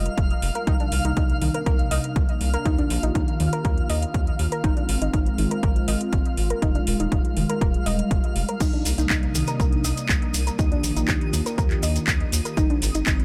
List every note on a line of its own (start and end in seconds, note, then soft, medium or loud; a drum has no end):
0.00 2.62 G3 medium
0.00 0.63 G#3 medium
0.00 0.63 F4 medium
0.00 8.62 F5 medium
0.06 closed hi-hat soft
0.18 0.34 F1 medium
0.18 kick loud
0.18 closed hi-hat soft
0.30 closed hi-hat soft
0.42 0.51 F1 medium
0.42 open hi-hat medium
0.55 0.58 A#4 medium
0.55 closed hi-hat soft
0.67 0.75 C2 medium
0.67 2.64 C3 medium
0.67 4.60 A#3 medium
0.67 4.60 D4 medium
0.67 0.72 D#4 loud
0.67 2.64 D#4 medium
0.67 kick loud
0.67 closed hi-hat soft
0.80 0.84 D4 medium
0.80 closed hi-hat soft
0.92 1.00 C2 loud
0.92 open hi-hat loud
1.05 1.12 C2 medium
1.05 1.08 D#4 medium
1.05 closed hi-hat soft
1.17 1.33 C2 medium
1.17 1.22 D#4 medium
1.17 kick loud
1.17 closed hi-hat soft
1.30 closed hi-hat soft
1.41 1.50 C2 medium
1.41 1.46 D#3 medium
1.41 open hi-hat medium
1.54 1.57 A#4 medium
1.54 closed hi-hat soft
1.66 1.82 C2 medium
1.66 1.69 A#4 medium
1.66 kick loud
1.66 closed hi-hat soft
1.79 closed hi-hat soft
1.91 1.99 C2 loud
1.91 1.96 D#5 medium
1.91 open hi-hat loud
2.04 closed hi-hat soft
2.16 2.24 C2 medium
2.16 kick loud
2.16 closed hi-hat soft
2.29 closed hi-hat soft
2.41 2.57 C2 medium
2.41 open hi-hat medium
2.54 2.56 A#4 medium
2.54 closed hi-hat soft
2.66 2.82 D#2 medium
2.66 4.62 D#3 medium
2.66 2.70 D#4 loud
2.66 4.62 F4 medium
2.66 4.62 G4 medium
2.66 kick loud
2.66 closed hi-hat medium
2.78 2.83 D4 medium
2.78 closed hi-hat soft
2.90 2.99 A#1 loud
2.90 open hi-hat medium
3.03 3.11 A#1 medium
3.03 3.06 D#4 medium
3.03 closed hi-hat soft
3.15 3.23 D#2 loud
3.15 3.20 D#4 medium
3.15 kick medium
3.15 closed hi-hat soft
3.28 closed hi-hat soft
3.40 3.48 D#2 medium
3.40 3.45 D#3 medium
3.40 open hi-hat medium
3.53 3.55 A#4 medium
3.53 closed hi-hat soft
3.65 3.81 D#2 medium
3.65 3.68 A#4 medium
3.65 kick loud
3.65 closed hi-hat soft
3.78 closed hi-hat soft
3.90 4.06 D#2 medium
3.90 3.94 D#5 medium
3.90 open hi-hat loud
4.02 closed hi-hat soft
4.14 4.30 D#2 medium
4.14 kick loud
4.14 closed hi-hat soft
4.27 closed hi-hat soft
4.39 4.47 D#2 medium
4.39 open hi-hat medium
4.52 4.55 A#4 medium
4.52 closed hi-hat soft
4.64 4.72 G#1 medium
4.64 6.60 G#3 medium
4.64 6.60 C4 medium
4.64 4.69 D#4 loud
4.64 8.57 F4 medium
4.64 kick loud
4.64 closed hi-hat medium
4.77 4.81 D4 medium
4.77 closed hi-hat soft
4.89 4.97 G#1 loud
4.89 open hi-hat medium
5.02 5.09 G#1 medium
5.02 5.04 D#4 medium
5.02 closed hi-hat medium
5.13 5.30 G#1 medium
5.13 5.18 D#4 medium
5.13 kick medium
5.13 closed hi-hat medium
5.26 closed hi-hat soft
5.38 5.46 G#1 medium
5.38 5.43 D#3 medium
5.38 open hi-hat medium
5.51 5.54 A#4 medium
5.51 closed hi-hat medium
5.63 5.79 G#1 medium
5.63 5.66 A#4 medium
5.63 kick loud
5.63 closed hi-hat medium
5.76 closed hi-hat soft
5.88 5.96 G#1 medium
5.88 5.93 D#5 medium
5.88 open hi-hat medium
6.01 closed hi-hat soft
6.13 6.21 G#1 medium
6.13 kick medium
6.13 closed hi-hat medium
6.26 closed hi-hat soft
6.37 6.54 G#1 medium
6.37 open hi-hat medium
6.50 6.53 A#4 medium
6.50 closed hi-hat medium
6.62 6.78 F1 medium
6.62 10.55 G3 medium
6.62 8.59 G#3 medium
6.62 6.67 D#4 loud
6.62 kick loud
6.62 closed hi-hat medium
6.75 6.80 D4 medium
6.75 closed hi-hat soft
6.87 6.95 D#1 loud
6.87 open hi-hat loud
7.00 7.07 D#1 medium
7.00 7.03 D#4 medium
7.00 closed hi-hat medium
7.12 7.20 F1 medium
7.12 7.17 D#4 medium
7.12 kick loud
7.12 closed hi-hat medium
7.25 closed hi-hat soft
7.37 7.45 F1 medium
7.37 7.41 D#3 medium
7.37 open hi-hat medium
7.49 7.52 A#4 medium
7.49 closed hi-hat medium
7.61 7.77 D#1 medium
7.61 7.64 A#4 medium
7.61 kick loud
7.61 closed hi-hat medium
7.74 closed hi-hat soft
7.86 8.02 D#1 loud
7.86 7.91 D#5 medium
7.86 open hi-hat loud
7.99 closed hi-hat medium
8.11 8.19 F1 loud
8.11 kick loud
8.11 closed hi-hat medium
8.24 closed hi-hat soft
8.36 8.44 F1 medium
8.36 open hi-hat medium
8.49 8.51 A#4 medium
8.49 closed hi-hat medium
8.60 8.69 C2 medium
8.60 10.57 C3 medium
8.60 12.53 A#3 medium
8.60 12.53 D4 medium
8.60 8.65 D#4 loud
8.60 10.57 D#4 medium
8.60 13.25 D#6 medium
8.60 kick loud
8.60 closed hi-hat medium
8.60 crash medium
8.60 maracas soft
8.73 8.78 D4 medium
8.73 closed hi-hat soft
8.85 8.93 C2 loud
8.85 open hi-hat loud
8.85 maracas medium
8.98 9.06 C2 medium
8.98 9.01 D#4 medium
8.98 closed hi-hat medium
8.98 maracas medium
9.10 9.26 C2 medium
9.10 9.15 D#4 medium
9.10 kick medium
9.10 clap loud
9.10 closed hi-hat medium
9.10 maracas soft
9.23 closed hi-hat soft
9.35 9.43 C2 loud
9.35 9.40 D#3 medium
9.35 open hi-hat medium
9.35 maracas medium
9.47 9.50 A#4 medium
9.47 closed hi-hat medium
9.47 maracas soft
9.60 9.76 C2 medium
9.60 9.63 A#4 medium
9.60 kick loud
9.60 closed hi-hat medium
9.60 maracas soft
9.72 closed hi-hat soft
9.84 9.93 C2 medium
9.84 9.89 D#5 medium
9.84 open hi-hat loud
9.84 maracas medium
9.97 closed hi-hat medium
9.97 maracas soft
10.09 10.17 C2 medium
10.09 kick loud
10.09 clap loud
10.09 closed hi-hat medium
10.09 maracas soft
10.22 closed hi-hat soft
10.34 10.50 C2 medium
10.34 open hi-hat medium
10.34 maracas medium
10.47 10.50 A#4 medium
10.47 closed hi-hat medium
10.47 maracas medium
10.59 10.75 D#2 medium
10.59 12.55 D#3 medium
10.59 10.64 D#4 loud
10.59 12.55 F4 medium
10.59 12.55 G4 medium
10.59 kick loud
10.59 closed hi-hat medium
10.59 maracas soft
10.72 10.76 D4 medium
10.72 closed hi-hat soft
10.84 10.92 A#1 loud
10.84 open hi-hat loud
10.84 maracas medium
10.96 11.04 A#1 medium
10.96 10.99 D#4 medium
10.96 closed hi-hat medium
10.96 maracas medium
11.08 11.17 D#2 medium
11.08 11.13 D#4 medium
11.08 kick loud
11.08 clap loud
11.08 closed hi-hat medium
11.08 maracas soft
11.21 closed hi-hat soft
11.33 11.41 D#2 medium
11.33 11.38 D#3 medium
11.33 open hi-hat medium
11.33 maracas medium
11.46 11.49 A#4 medium
11.46 closed hi-hat medium
11.46 maracas medium
11.58 11.74 D#2 loud
11.58 11.61 A#4 medium
11.58 kick loud
11.58 closed hi-hat medium
11.58 maracas soft
11.71 clap soft
11.71 closed hi-hat soft
11.83 11.99 D#2 medium
11.83 11.88 D#5 medium
11.83 open hi-hat loud
11.83 maracas medium
11.96 closed hi-hat medium
11.96 maracas medium
12.07 12.24 D#2 medium
12.07 kick loud
12.07 clap loud
12.07 closed hi-hat medium
12.07 maracas soft
12.20 closed hi-hat soft
12.32 12.41 D#2 medium
12.32 open hi-hat medium
12.32 maracas medium
12.45 12.48 A#4 medium
12.45 closed hi-hat medium
12.45 maracas medium
12.57 12.65 G#1 loud
12.57 13.25 G#3 medium
12.57 13.25 C4 medium
12.57 12.62 D#4 loud
12.57 13.25 F4 medium
12.57 kick loud
12.57 closed hi-hat medium
12.57 maracas soft
12.70 12.75 D4 medium
12.70 closed hi-hat soft
12.82 12.90 G#1 loud
12.82 open hi-hat loud
12.82 maracas medium
12.94 13.02 G#1 medium
12.94 12.98 D#4 medium
12.94 closed hi-hat medium
12.94 maracas soft
13.06 13.23 G#1 medium
13.06 13.12 D#4 medium
13.06 kick loud
13.06 clap loud
13.06 closed hi-hat soft
13.06 maracas soft
13.20 closed hi-hat soft